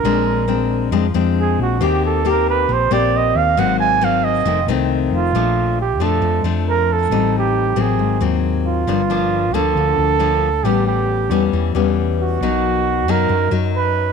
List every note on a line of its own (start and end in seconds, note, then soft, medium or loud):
0.00 0.88 A#1 medium
0.00 0.93 A#4 medium
0.04 0.91 A#2 medium
0.04 0.45 G#3 medium
0.04 0.45 C4 medium
0.04 0.45 D4 medium
0.48 0.89 G#3 soft
0.48 0.89 C4 medium
0.48 0.89 D4 medium
0.91 1.12 F2 medium
0.91 1.79 F3 medium
0.91 1.05 G#3 medium
0.91 1.05 C4 medium
0.91 1.06 D4 medium
1.14 1.56 F2 medium
1.14 1.77 G#3 medium
1.14 1.77 C4 medium
1.14 1.77 D4 medium
1.40 1.59 G#4 medium
1.59 1.79 A#1 medium
1.59 1.86 F#4 medium
1.81 2.65 D#2 medium
1.81 2.67 D#3 medium
1.81 2.21 A#3 medium
1.81 2.22 C4 medium
1.81 2.22 G4 medium
1.81 2.05 G4 medium
2.05 2.31 A4 medium
2.25 2.88 A#3 medium
2.25 2.88 C4 medium
2.25 2.88 G4 medium
2.30 2.49 A#4 medium
2.49 2.74 B4 loud
2.69 2.89 A#1 medium
2.69 3.55 A#2 medium
2.73 2.94 C5 medium
2.91 3.32 A#1 medium
2.91 3.54 A#3 medium
2.91 3.54 C4 medium
2.91 3.54 G4 medium
2.91 3.18 D5 loud
3.17 3.38 D#5 medium
3.35 3.56 D#2 medium
3.35 3.61 F5 loud
3.57 4.42 G#1 medium
3.57 4.44 G#2 medium
3.57 3.98 F#3 medium
3.57 3.99 A#3 medium
3.57 3.99 C4 medium
3.57 3.79 F#5 medium
3.80 4.05 G#5 loud
4.01 4.44 F#3 medium
4.01 4.44 A#3 medium
4.01 4.44 C4 medium
4.01 4.26 F5 loud
4.24 4.68 D#5 loud
4.45 4.68 F1 medium
4.45 5.32 F2 medium
4.45 4.59 D#3 medium
4.45 4.59 A3 medium
4.45 4.59 C4 medium
4.66 5.08 C2 loud
4.66 5.31 D#3 medium
4.66 5.31 A3 medium
4.66 5.31 C4 medium
5.11 5.32 F1 medium
5.16 5.76 F4 medium
5.33 5.99 A#1 medium
5.33 6.21 A#2 medium
5.33 5.78 F3 medium
5.33 5.79 A3 medium
5.33 5.79 D4 medium
5.81 6.04 G4 medium
5.99 6.20 F2 medium
5.99 6.41 F3 medium
5.99 6.41 A3 medium
5.99 6.41 D4 medium
5.99 6.46 A4 medium
6.21 6.42 F2 medium
6.21 7.08 F2 medium
6.43 7.06 F2 medium
6.43 7.07 F3 medium
6.43 7.07 A3 medium
6.43 7.08 D4 medium
6.69 6.94 A#4 loud
6.92 7.35 A4 loud
7.10 7.73 A1 medium
7.10 7.97 A2 medium
7.10 7.74 G3 medium
7.10 7.74 C4 medium
7.10 7.74 D#4 medium
7.38 7.82 G4 medium
7.76 7.97 A1 medium
7.76 8.17 F#3 medium
7.76 8.18 A#3 medium
7.76 8.18 C4 medium
7.81 8.23 G#4 medium
7.98 8.19 G#1 medium
7.98 8.85 G#2 medium
8.21 8.83 D#2 medium
8.21 8.84 F#3 medium
8.21 8.84 A#3 medium
8.21 8.84 C4 medium
8.66 9.55 F4 medium
8.87 9.53 G1 medium
8.87 9.74 G2 medium
8.87 9.01 F3 medium
8.87 9.01 A#3 medium
8.87 9.01 D4 medium
9.10 9.51 F3 medium
9.10 9.50 A#3 medium
9.10 9.51 D4 medium
9.53 9.74 D2 medium
9.53 10.17 F3 medium
9.53 10.17 A#3 medium
9.53 10.17 D4 medium
9.53 10.66 A4 loud
9.75 9.96 D2 medium
9.75 10.63 D3 medium
9.97 10.60 D2 medium
10.19 10.48 F3 medium
10.19 10.48 A#3 medium
10.19 10.49 D4 medium
10.63 11.30 A1 medium
10.63 11.51 A2 medium
10.63 11.28 G3 medium
10.63 11.27 B3 medium
10.63 11.28 C#4 medium
10.63 10.86 G4 medium
10.87 11.49 G4 medium
11.30 11.51 E2 medium
11.30 11.71 G3 medium
11.30 11.72 B3 medium
11.30 11.72 C#4 medium
11.53 11.73 E2 medium
11.53 12.39 E3 medium
11.74 12.37 E2 medium
11.74 12.39 G3 medium
11.74 12.40 B3 medium
11.74 12.40 C#4 medium
12.20 13.12 F#4 medium
12.41 13.08 B1 medium
12.41 13.28 B2 medium
12.41 13.05 F#3 medium
12.41 13.05 A#3 medium
12.41 13.05 D#4 medium
13.08 13.28 F#2 medium
13.08 13.49 F#3 medium
13.08 13.49 A#3 medium
13.08 13.49 D#4 medium
13.08 13.53 A#4 loud
13.29 14.12 F#2 medium
13.29 13.50 F#2 medium
13.51 14.12 F#2 medium
13.51 14.12 F#3 medium
13.51 14.12 D#4 medium
13.76 14.12 B4 medium